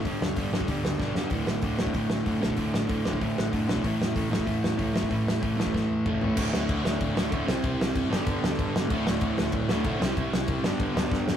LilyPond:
<<
  \new Staff \with { instrumentName = "Distorted electric guitar" } { \clef bass \time 4/4 \key a \mixolydian \tempo 4 = 190 <g, d g>4 <g, d g>8 <g, d g>8 <g, d g>4 <g, d g>8 <g, d g>8 | <d, a, d>4 <d, a, d>8 <d, a, d>8 <d, a, d>4 <d, a, d>8 <d, a, d>8 | <d, a, d>4 <d, a, d>8 <d, a, d>8 <d, a, d>4 <d, a, d>8 <d, a, d>8 | <a, e a>4 <a, e a>8 <a, e a>8 <a, e a>4 <a, e a>8 <a, e a>8 |
<a, e a>4 <a, e a>8 <a, e a>8 <a, e a>4 <a, e a>8 <a, e a>8 | \key d \mixolydian <d, a, d>2~ <d, a, d>8 <d, a, d>8 <d, a, d>8 <c g c'>8~ | <c g c'>4. <g, d g>2~ <g, d g>8 | <d, a, d>2~ <d, a, d>8 <d, a, d>8 <d, a, d>8 <c g c'>8~ |
<c g c'>4. <g, d g>2~ <g, d g>8 | }
  \new Staff \with { instrumentName = "Overdriven electric guitar" } { \clef bass \time 4/4 \key a \mixolydian <g, d g>4 <g, d g>8 <g, d g>8 <g, d g>4 <g, d g>8 <g, d g>8 | <d, a, d>4 <d, a, d>8 <d, a, d>8 <d, a, d>4 <d, a, d>8 <d, a, d>8 | <d, a, d>4 <d, a, d>8 <d, a, d>8 <d, a, d>4 <d, a, d>8 <d, a, d>8 | <a, e a>4 <a, e a>8 <a, e a>8 <a, e a>4 <a, e a>8 <a, e a>8 |
<a, e a>4 <a, e a>8 <a, e a>8 <a, e a>4 <a, e a>8 <a, e a>8 | \key d \mixolydian <d, a, d a fis'>2~ <d, a, d a fis'>8 <d, a, d a fis'>8 <d, a, d a fis'>8 <c g c' e' g' c''>8~ | <c g c' e' g' c''>4. <g, d g b d' g'>2~ <g, d g b d' g'>8 | <d, a, d a fis'>2~ <d, a, d a fis'>8 <d, a, d a fis'>8 <d, a, d a fis'>8 <c g c' e' g' c''>8~ |
<c g c' e' g' c''>4. <g, d g b d' g'>2~ <g, d g b d' g'>8 | }
  \new Staff \with { instrumentName = "Picked electric bass" } { \clef bass \time 4/4 \key a \mixolydian g,,8 d,8 g,,8 g,,8 d,8 d,8 b,,8 e,,8 | d,,8 a,,8 d,,8 d,,8 a,,8 a,,8 fis,,8 b,,8 | d,,8 a,,8 d,,8 d,,8 a,,8 a,,8 fis,,8 b,,8 | a,,8 e,8 a,,8 a,,8 e,8 e,8 cis,8 g,,8 |
a,,8 e,8 a,,8 a,,8 e,8 e,8 cis,8 g,,8 | \key d \mixolydian d,,8 d,,8 d,,8 d,,8 d,,8 d,,8 d,,8 c,8 | c,8 c,8 fis,,8 g,,8 g,,8 d,8 g,,8 g,8 | d,,8 d,,8 d,,8 d,,8 d,,8 d,,8 b,,8 c,8 |
c,8 c,8 c,8 g,,8 g,,8 d,8 g,,8 e,,8 | }
  \new DrumStaff \with { instrumentName = "Drums" } \drummode { \time 4/4 <hho bd>8 sn8 <hho bd>8 sn16 bd16 <hho bd>8 sn8 <bd sn>8 sn8 | <hho bd>8 sn8 <hho bd>8 sn16 bd16 <hho bd>8 sn8 <hho bd>8 sn16 bd16 | <hho bd>8 sn8 <hho bd>8 sn16 bd16 <hho bd>8 sn8 <hho bd>8 sn16 bd16 | <hho bd>8 sn8 <hho bd>8 sn16 bd16 <hho bd>8 sn8 <hho bd>8 sn16 bd16 |
<hho bd>8 sn8 <hho bd>8 sn16 bd16 <bd sn>4 <bd toml>8 tomfh8 | <cymc bd>8 sn8 <cymc bd>8 sn8 <cymc bd>8 sn8 <cymc bd>8 sn8 | <cymc bd>8 sn8 <cymc bd>8 sn8 <cymc bd>8 sn8 <cymc bd>8 sn8 | <cymc bd>8 sn8 <cymc bd>8 sn8 <cymc bd>8 sn8 <cymc bd>8 sn8 |
<cymc bd>8 sn8 <cymc bd>8 sn8 <cymc bd>8 sn8 <bd sn>8 sn8 | }
>>